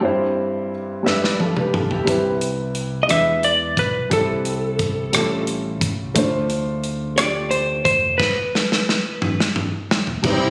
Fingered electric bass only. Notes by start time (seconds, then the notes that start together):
2.08 C2
3.10 E2
3.77 B1
4.11 C2
5.14 A1
5.81 C2
6.16 D2
7.85 F1
10.24 C2